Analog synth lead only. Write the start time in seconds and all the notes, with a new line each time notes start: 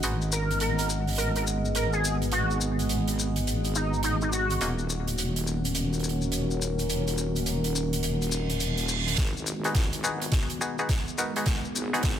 0.32 A#4
0.61 A#4
1.18 A#4
1.36 A#4
1.75 A#4
1.93 G#4
2.32 F#4
3.75 D#4
4.04 D#4
4.22 D#4
4.32 F#4